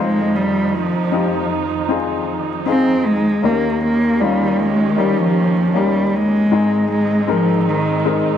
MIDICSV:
0, 0, Header, 1, 4, 480
1, 0, Start_track
1, 0, Tempo, 769231
1, 224, Time_signature, 4, 2, 24, 8
1, 5227, End_track
2, 0, Start_track
2, 0, Title_t, "Upright piano"
2, 0, Program_c, 0, 0
2, 0, Note_on_c, 0, 29, 46
2, 0, Note_on_c, 0, 41, 45
2, 0, Note_on_c, 0, 60, 53
2, 0, Note_on_c, 0, 63, 53
2, 0, Note_on_c, 0, 65, 50
2, 0, Note_on_c, 0, 72, 58
2, 101, Control_c, 0, 64, 127
2, 665, Note_off_c, 0, 60, 0
2, 667, Note_off_c, 0, 63, 0
2, 668, Note_off_c, 0, 65, 0
2, 671, Note_off_c, 0, 72, 0
2, 699, Note_on_c, 0, 60, 56
2, 702, Note_on_c, 0, 63, 51
2, 706, Note_on_c, 0, 65, 45
2, 711, Note_on_c, 0, 67, 54
2, 1157, Note_off_c, 0, 60, 0
2, 1159, Note_off_c, 0, 63, 0
2, 1161, Note_off_c, 0, 65, 0
2, 1163, Note_off_c, 0, 67, 0
2, 1178, Note_on_c, 0, 60, 59
2, 1182, Note_on_c, 0, 63, 51
2, 1187, Note_on_c, 0, 65, 49
2, 1191, Note_on_c, 0, 68, 60
2, 1637, Note_off_c, 0, 60, 0
2, 1639, Note_off_c, 0, 63, 0
2, 1641, Note_off_c, 0, 65, 0
2, 1643, Note_off_c, 0, 68, 0
2, 1660, Note_on_c, 0, 60, 47
2, 1665, Note_on_c, 0, 63, 43
2, 1668, Note_on_c, 0, 65, 45
2, 1673, Note_on_c, 0, 68, 57
2, 1878, Note_off_c, 0, 29, 0
2, 1878, Note_off_c, 0, 41, 0
2, 2118, Note_off_c, 0, 60, 0
2, 2120, Note_off_c, 0, 63, 0
2, 2122, Note_off_c, 0, 65, 0
2, 2124, Note_off_c, 0, 68, 0
2, 2138, Note_on_c, 0, 58, 50
2, 2143, Note_on_c, 0, 61, 43
2, 2144, Note_on_c, 0, 39, 43
2, 2146, Note_on_c, 0, 51, 47
2, 2146, Note_on_c, 0, 63, 48
2, 2151, Note_on_c, 0, 67, 55
2, 2153, Control_c, 0, 64, 0
2, 2250, Control_c, 0, 64, 127
2, 2597, Note_off_c, 0, 58, 0
2, 2599, Note_off_c, 0, 61, 0
2, 2601, Note_off_c, 0, 63, 0
2, 2603, Note_off_c, 0, 67, 0
2, 2621, Note_on_c, 0, 58, 49
2, 2625, Note_on_c, 0, 61, 45
2, 2629, Note_on_c, 0, 63, 47
2, 2632, Note_on_c, 0, 65, 58
2, 3078, Note_off_c, 0, 58, 0
2, 3080, Note_off_c, 0, 61, 0
2, 3082, Note_off_c, 0, 63, 0
2, 3084, Note_off_c, 0, 65, 0
2, 3100, Note_on_c, 0, 58, 52
2, 3106, Note_on_c, 0, 61, 46
2, 3109, Note_on_c, 0, 63, 46
2, 3113, Note_on_c, 0, 67, 53
2, 3558, Note_off_c, 0, 58, 0
2, 3561, Note_off_c, 0, 61, 0
2, 3562, Note_off_c, 0, 63, 0
2, 3564, Note_off_c, 0, 67, 0
2, 3581, Note_on_c, 0, 58, 51
2, 3586, Note_on_c, 0, 61, 46
2, 3589, Note_on_c, 0, 63, 42
2, 3594, Note_on_c, 0, 67, 56
2, 4038, Note_off_c, 0, 58, 0
2, 4039, Note_off_c, 0, 39, 0
2, 4040, Note_off_c, 0, 51, 0
2, 4041, Note_off_c, 0, 61, 0
2, 4042, Note_off_c, 0, 63, 0
2, 4045, Note_off_c, 0, 67, 0
2, 4063, Note_on_c, 0, 56, 53
2, 4066, Note_on_c, 0, 32, 48
2, 4066, Note_on_c, 0, 44, 44
2, 4066, Note_on_c, 0, 60, 51
2, 4070, Note_on_c, 0, 63, 52
2, 4071, Control_c, 0, 64, 0
2, 4074, Note_on_c, 0, 68, 62
2, 4176, Control_c, 0, 64, 127
2, 4519, Note_off_c, 0, 56, 0
2, 4521, Note_off_c, 0, 60, 0
2, 4523, Note_off_c, 0, 63, 0
2, 4525, Note_off_c, 0, 68, 0
2, 4540, Note_on_c, 0, 56, 51
2, 4542, Note_on_c, 0, 60, 45
2, 4547, Note_on_c, 0, 63, 50
2, 4551, Note_on_c, 0, 70, 58
2, 4998, Note_off_c, 0, 56, 0
2, 4999, Note_off_c, 0, 60, 0
2, 5001, Note_off_c, 0, 63, 0
2, 5003, Note_off_c, 0, 70, 0
2, 5022, Note_on_c, 0, 56, 54
2, 5024, Note_on_c, 0, 60, 45
2, 5031, Note_on_c, 0, 63, 46
2, 5035, Note_on_c, 0, 70, 55
2, 5227, Note_off_c, 0, 32, 0
2, 5227, Note_off_c, 0, 44, 0
2, 5227, Note_off_c, 0, 56, 0
2, 5227, Note_off_c, 0, 60, 0
2, 5227, Note_off_c, 0, 63, 0
2, 5227, Note_off_c, 0, 70, 0
2, 5227, End_track
3, 0, Start_track
3, 0, Title_t, "Cello"
3, 0, Program_c, 1, 42
3, 0, Note_on_c, 1, 56, 69
3, 222, Note_on_c, 1, 55, 61
3, 232, Note_off_c, 1, 56, 0
3, 464, Note_on_c, 1, 53, 58
3, 473, Note_off_c, 1, 55, 0
3, 944, Note_off_c, 1, 53, 0
3, 1669, Note_on_c, 1, 60, 77
3, 1909, Note_on_c, 1, 56, 70
3, 1918, Note_off_c, 1, 60, 0
3, 2150, Note_on_c, 1, 58, 60
3, 2159, Note_off_c, 1, 56, 0
3, 2387, Note_off_c, 1, 58, 0
3, 2391, Note_on_c, 1, 58, 66
3, 2626, Note_on_c, 1, 55, 65
3, 2636, Note_off_c, 1, 58, 0
3, 2868, Note_on_c, 1, 56, 66
3, 2877, Note_off_c, 1, 55, 0
3, 3108, Note_on_c, 1, 55, 61
3, 3117, Note_off_c, 1, 56, 0
3, 3230, Note_on_c, 1, 53, 64
3, 3239, Note_off_c, 1, 55, 0
3, 3591, Note_on_c, 1, 55, 59
3, 3600, Note_off_c, 1, 53, 0
3, 3834, Note_on_c, 1, 56, 68
3, 3844, Note_off_c, 1, 55, 0
3, 4306, Note_off_c, 1, 56, 0
3, 4310, Note_on_c, 1, 56, 63
3, 4556, Note_on_c, 1, 53, 59
3, 4565, Note_off_c, 1, 56, 0
3, 4790, Note_off_c, 1, 53, 0
3, 4794, Note_on_c, 1, 51, 50
3, 5227, Note_off_c, 1, 51, 0
3, 5227, End_track
4, 0, Start_track
4, 0, Title_t, "String section"
4, 0, Program_c, 2, 48
4, 0, Note_on_c, 2, 41, 50
4, 0, Note_on_c, 2, 51, 54
4, 0, Note_on_c, 2, 53, 51
4, 0, Note_on_c, 2, 63, 62
4, 2119, Note_off_c, 2, 51, 0
4, 2119, Note_off_c, 2, 53, 0
4, 2120, Note_off_c, 2, 41, 0
4, 2120, Note_off_c, 2, 63, 0
4, 2139, Note_on_c, 2, 51, 53
4, 2140, Note_on_c, 2, 39, 52
4, 2140, Note_on_c, 2, 67, 46
4, 2141, Note_on_c, 2, 61, 58
4, 4042, Note_off_c, 2, 51, 0
4, 4043, Note_off_c, 2, 39, 0
4, 4043, Note_off_c, 2, 61, 0
4, 4043, Note_off_c, 2, 67, 0
4, 4064, Note_on_c, 2, 63, 60
4, 4066, Note_on_c, 2, 44, 53
4, 4066, Note_on_c, 2, 51, 46
4, 4066, Note_on_c, 2, 60, 50
4, 5227, Note_off_c, 2, 44, 0
4, 5227, Note_off_c, 2, 51, 0
4, 5227, Note_off_c, 2, 60, 0
4, 5227, Note_off_c, 2, 63, 0
4, 5227, End_track
0, 0, End_of_file